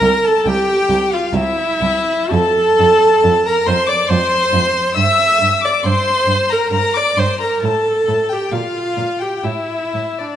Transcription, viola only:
Already playing: A#4
0.27 A4
0.48 G4
1.13 F4
1.34 E4
2.33 A4
3.47 A#4
3.68 C5
3.89 D5
4.10 C5
4.98 E5
5.65 D5
5.86 C5
6.52 A#4
6.73 A#4
6.97 D5
7.19 C5
7.43 A#4
7.64 A4
8.33 G4
8.53 F4
9.22 G4
9.44 E4
10.21 D4

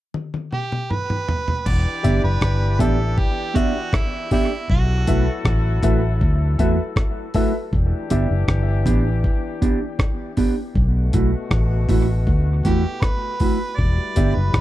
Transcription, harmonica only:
0.53 G4
0.91 B4
1.67 D5
2.24 B4
2.80 A4
3.18 G4
3.56 F#4
3.95 E4
4.33 E4
4.70 F#4
12.65 G4
13.02 B4
13.78 D5
14.35 B4

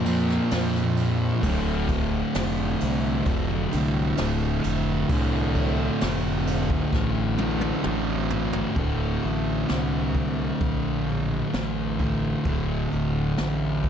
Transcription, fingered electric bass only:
Already playing: F2
0.52 F2
1.43 D1
2.35 F1
2.82 C2
3.26 F1
3.73 C2
4.19 D1
4.64 F1
5.09 C2
6.02 F1
6.93 A1
7.85 A1
8.76 D1
9.24 A1
9.70 C2
10.61 A#1
11.54 A1
12.45 D1
12.93 D1
13.39 A1

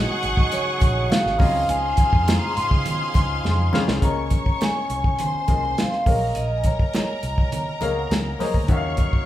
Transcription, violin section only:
Already playing: G#4 F#5 C#6
1.40 G#4 F5 C6
4.02 C#5 C#6
5.19 C5 C6
6.07 A#4 A#5
8.69 C#5 C#6

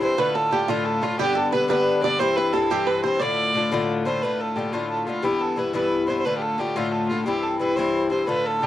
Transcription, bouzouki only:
0.00 G2 E3 C4 E4
0.17 A2 D3 A3 F4
0.51 A2 D3 A3 F4
0.68 A2 D3 A3 F4
1.01 A2 D3 A3 F4
1.19 G2 D3 B3 D4
1.52 G2 D3 B3 D4
1.68 G2 D3 B3 D4
2.02 G2 D3 B3 D4
2.19 G2 E3 C4 E4
2.53 G2 E3 C4 E4
2.70 G2 E3 C4 E4
3.03 G2 E3 C4 E4
3.20 A2 D3 A3 F4
3.54 A2 D3 A3 F4
3.72 A2 D3 A3 F4
4.05 A2 D3 A3 F4
4.23 A2 D3 A3 F4
4.56 A2 D3 A3 F4
4.73 A2 D3 A3 F4
5.07 A2 D3 A3 F4
5.22 G2 E3 B3 E4
5.56 G2 E3 B3 E4
5.73 G2 E3 B3 E4
6.07 G2 E3 B3 E4
6.25 A2 D3 A3 F4
6.58 A2 D3 A3 F4
6.76 A2 D3 A3 F4
7.09 A2 D3 A3 F4
7.26 G2 E3 C4 E4
7.59 G2 E3 C4 E4
7.77 G2 E3 C4 E4
8.10 G2 E3 C4 E4
8.27 A2 D3 A3 F4
8.61 A2 D3 A3

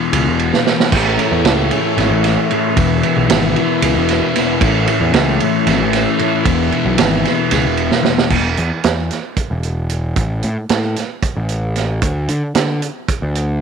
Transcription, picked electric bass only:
0.13 C#2
0.26 E1
0.92 A1
1.31 E2
1.45 C#2
1.97 G#1
2.11 A1
2.77 E1
3.17 B1
3.29 G#1
3.82 C#2
3.96 E1
4.61 A1
5.00 E2
5.14 C#2
5.67 G#1
5.80 A1
6.46 E1
6.85 B1
6.99 G#1
7.52 C#2
7.65 E1
8.31 E1
8.58 E2
8.85 E2
9.51 E1
10.16 A1
10.44 A2
10.70 A2
11.36 A1
12.02 D2
12.29 D3
12.55 D3
13.22 D2

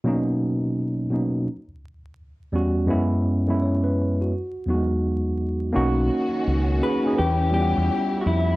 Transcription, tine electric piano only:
0.04 B2 F#3 A#3 C#4 D#4
1.10 B2 F#3 A#3 C#4
1.14 D#4
2.52 E2 G3 B3 C#4 F#4
2.86 F#2 G#3 B3 C#4
2.90 E4
3.46 F#2 G#3 B3 C#4 E4
3.62 C#5
3.84 B4
4.21 F#4
4.66 E2 F#3 B3 D#4 F#4
4.74 G#3
5.73 A#3 C#4 D#4 F#4
6.79 A#3 C#4 D#4 G#4
7.03 A#3 C#4 D#4 G#4
7.51 G3 B3 C#4 F4
7.61 F#5

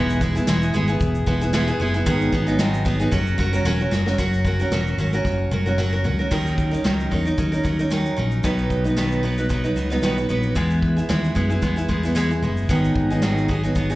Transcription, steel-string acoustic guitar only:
Already playing: E3 G#3 B3 E4 G#4
0.21 G#3 B3 E4 G#4
0.35 B3 E4 G#4
0.47 E3 G#3 B3 E4 G#4
0.74 G#3 B3 E4 G#4
0.88 B3 E4 G#4
1.26 G#3 B3 E4 G#4
1.41 B3 E4 G#4
1.53 E3 G#3 B3 E4 G#4
1.68 B3 E4 G#4
1.80 G#3 B3 E4 G#4
1.94 B3 E4 G#4
2.06 G#2 D#3 F#3 B3 D#4 G#4
2.32 F#3 B3 D#4 G#4
2.47 F#3 B3 D#4 G#4
2.59 G#2 D#3 F#3 B3 D#4 G#4
2.85 F#3 B3 D#4 G#4
3.00 F#3 B3 D#4 G#4
3.11 F#3 C#4 F#4 A#4
3.38 F#3 C#4 F#4 A#4
3.53 C#4 F#4 A#4
3.65 F#3 C#4 F#4 A#4
3.80 C#4 F#4 A#4
3.91 F#3 C#4 F#4 A#4
4.06 C#4 F#4 A#4
4.18 F#3 C#4 F#4 A#4
4.45 F#3 C#4 F#4 A#4
4.60 C#4 F#4 A#4
4.72 F#3 C#4 F#4 A#4
4.98 F#3 C#4 F#4 A#4
5.13 C#4 F#4 A#4
5.51 F#3 C#4 F#4 A#4
5.66 C#4 F#4 A#4
5.78 F#3 C#4 F#4 A#4
5.93 C#4 F#4 A#4
6.04 F#3 C#4 F#4 A#4
6.19 C#4 F#4 A#4
6.31 D#3 F#3 C#4 D#4 A#4
6.71 C#4 D#4 A#4
6.84 D#3 F#3 C#4 D#4 A#4
7.11 F#3 C#4 D#4 A#4
7.25 C#4 D#4 A#4
7.38 F#3 C#4 D#4 A#4
7.52 C#4 D#4 A#4
7.64 F#3 C#4 D#4 A#4
7.79 C#4 D#4 A#4
7.91 D#3 F#3 C#4 D#4 A#4
8.16 F#3 C#4 D#4 A#4
8.44 B2 D#3 F#3 B3 D#4 B4
8.84 F#3 B3 D#4 B4
8.97 B2 D#3 F#3 B3 D#4 B4
9.23 F#3 B3 D#4 B4
9.38 F#3 B3 D#4 B4
9.49 F#3 B3 D#4 B4
9.64 F#3 B3 D#4 B4
9.76 F#3 B3 D#4 B4
9.90 F#3 B3 D#4 B4
10.03 B2 D#3 F#3 B3 D#4 B4
10.17 F#3 B3 D#4 B4
10.29 F#3 B3 D#4 B4
10.55 E3 G#3 B3 E4 G#4
10.97 B3 E4 G#4
11.09 E3 G#3 B3 E4 G#4
11.35 G#3 B3 E4 G#4
11.50 B3 E4 G#4
11.62 G#3 B3 E4 G#4
11.76 B3 E4 G#4
11.88 G#3 B3 E4 G#4
12.03 B3 E4 G#4
12.15 E3 G#3 B3 E4 G#4
12.30 B3 E4 G#4
12.42 G#3 B3 E4 G#4
12.69 G#2 D#3 F#3 B3 D#4 G#4
13.10 F#3 B3 D#4 G#4
13.22 G#2 D#3 F#3 B3 D#4 G#4
13.48 F#3 B3 D#4 G#4
13.63 F#3 B3 D#4 G#4
13.75 F#3 B3 D#4 G#4
13.90 F#3 B3 D#4 G#4

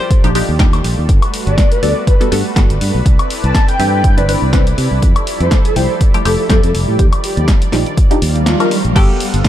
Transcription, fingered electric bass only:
0.24 A#1
0.49 D#2
0.84 A#1
0.98 D#2
1.09 G1
1.47 G1
1.83 D2
2.32 G2
2.56 G1
2.70 G1
2.81 G2
2.95 B1
3.06 C2
3.44 C2
3.79 G2
4.17 G1
4.42 C2
4.78 C3
4.91 C2
5.02 F2
5.40 F2
5.76 C2
6.25 F1
6.50 F2
6.63 F2
6.74 F1
6.88 A2
6.99 D#2
7.37 D#2
7.73 A#1
8.22 D#2
8.85 A#1
8.96 G1
9.34 G1

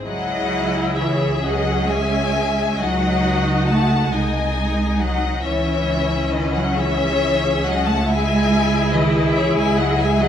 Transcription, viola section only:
0.06 E4 G#4
1.43 C#4
2.79 D#4 F#4
4.13 D#4
5.44 C#4 E4
6.76 G#4
8.09 E4 G#4

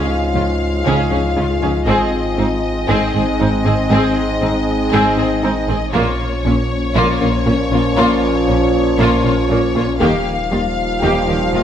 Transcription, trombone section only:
Already playing: G#2 G#3
1.87 G#2 G#3
5.95 A#2 F3
10.01 A#2 F3

